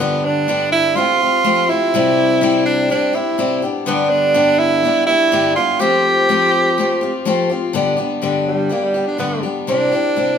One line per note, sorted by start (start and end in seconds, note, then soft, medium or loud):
0.00 0.47 G2 medium
0.00 0.47 D3 medium
0.00 0.48 G3 medium
0.00 0.26 B3 medium
0.00 0.48 B3 medium
0.00 0.48 D4 medium
0.00 0.50 G4 medium
0.25 0.71 D4 loud
0.48 0.97 G2 medium
0.48 0.97 D3 medium
0.48 0.95 G3 medium
0.48 0.96 B3 medium
0.48 0.97 D4 medium
0.48 0.98 G4 medium
0.72 0.98 E4 loud
0.96 1.21 A3 medium
0.96 1.21 C4 medium
0.96 1.71 F4 loud
0.96 1.21 F4 medium
0.96 1.19 G4 medium
1.22 1.44 C4 soft
1.22 1.45 F4 soft
1.44 1.69 F3 medium
1.44 1.69 A3 medium
1.44 1.70 C4 medium
1.44 1.70 F4 medium
1.44 1.68 G4 medium
1.69 1.94 C4 soft
1.69 2.65 E4 loud
1.69 1.95 F4 soft
1.69 1.94 G4 medium
1.94 2.40 C3 medium
1.94 2.41 G3 medium
1.94 2.42 C4 medium
1.94 2.42 E4 loud
1.94 2.42 G4 loud
2.41 2.90 C3 medium
2.41 2.89 G3 medium
2.41 2.89 C4 medium
2.41 2.90 E4 medium
2.41 2.92 G4 medium
2.66 2.89 D4 loud
2.89 3.14 G3 medium
2.89 3.15 C4 medium
2.89 3.16 D4 medium
2.89 3.14 E4 medium
2.89 3.12 G4 medium
3.13 3.37 C4 soft
3.13 3.38 E4 medium
3.13 3.64 E4 medium
3.13 3.38 G4 medium
3.38 3.63 C3 medium
3.38 3.63 G3 medium
3.38 3.63 C4 medium
3.38 3.63 E4 medium
3.38 3.61 G4 medium
3.62 3.86 G3 soft
3.62 3.86 B3 soft
3.62 3.87 D4 soft
3.62 3.87 G4 medium
3.86 4.33 G2 loud
3.86 4.33 D3 medium
3.86 4.35 G3 medium
3.86 4.11 B3 medium
3.86 4.34 B3 medium
3.86 4.35 D4 medium
3.86 4.35 G4 medium
4.10 4.61 D4 loud
4.34 4.84 G2 medium
4.34 4.84 D3 medium
4.34 4.83 G3 medium
4.34 4.83 B3 medium
4.34 4.84 D4 medium
4.34 4.86 G4 medium
4.59 5.06 E4 loud
4.83 5.08 G3 medium
4.83 5.09 B3 medium
4.83 5.08 D4 medium
4.83 5.07 G4 medium
5.07 5.32 G3 soft
5.07 5.32 B3 medium
5.07 5.32 D4 medium
5.07 5.53 E4 loud
5.07 5.33 G4 medium
5.32 5.57 G2 medium
5.32 5.57 D3 medium
5.32 5.57 G3 medium
5.32 5.57 B3 medium
5.32 5.56 D4 medium
5.32 5.55 G4 medium
5.56 5.80 G3 soft
5.56 5.81 B3 soft
5.56 5.81 D4 medium
5.56 5.82 F4 loud
5.56 5.80 G4 medium
5.79 6.28 F3 medium
5.79 6.28 A3 medium
5.79 6.29 C4 medium
5.79 6.30 F4 medium
5.79 7.26 G4 loud
5.79 6.30 G4 medium
6.29 6.78 F3 medium
6.29 6.77 A3 medium
6.29 6.78 C4 medium
6.29 6.79 F4 medium
6.29 6.79 G4 medium
6.78 7.02 A3 medium
6.78 7.03 C4 medium
6.78 7.02 F4 medium
6.78 7.00 G4 medium
7.01 7.25 C4 soft
7.01 7.26 F4 medium
7.01 7.26 G4 medium
7.25 7.50 F3 medium
7.25 7.50 A3 medium
7.25 7.51 C4 medium
7.25 7.50 F4 medium
7.25 7.48 G4 loud
7.50 7.74 C4 soft
7.50 7.75 F4 medium
7.50 7.74 G4 medium
7.73 7.98 G2 loud
7.73 7.99 D3 medium
7.73 7.98 G3 medium
7.73 7.97 B3 medium
7.73 7.97 D4 medium
7.73 7.95 G4 medium
7.97 8.21 G3 medium
7.97 8.21 B3 medium
7.97 8.22 D4 medium
7.97 8.22 G4 medium
8.22 8.71 G2 medium
8.22 8.71 D3 medium
8.22 8.68 G3 medium
8.22 8.69 B3 medium
8.22 8.70 D4 medium
8.22 8.71 G4 medium
8.48 8.75 G3 medium
8.69 8.95 G3 medium
8.69 8.86 A#3 medium
8.69 8.95 B3 medium
8.69 8.95 D4 medium
8.69 8.93 G4 medium
8.85 9.07 G3 medium
8.94 9.18 G3 soft
8.94 9.19 B3 soft
8.94 9.19 D4 soft
8.94 9.19 G4 soft
9.08 9.19 D4 medium
9.18 9.43 G2 medium
9.18 9.44 D3 medium
9.18 9.44 G3 medium
9.18 9.43 B3 medium
9.18 9.44 B3 medium
9.18 9.43 D4 medium
9.18 9.42 G4 medium
9.43 9.67 G3 soft
9.43 9.68 B3 soft
9.43 9.68 D4 soft
9.43 9.68 G4 soft
9.67 9.92 C3 medium
9.67 9.92 G3 medium
9.67 9.93 C4 medium
9.67 10.38 D4 loud
9.67 9.93 E4 medium
9.67 9.91 G4 medium
9.92 10.16 C4 soft
9.92 10.16 E4 medium
9.92 10.17 G4 medium
10.16 10.38 C3 medium
10.16 10.38 G3 medium
10.16 10.38 C4 medium
10.16 10.38 E4 medium
10.16 10.38 G4 medium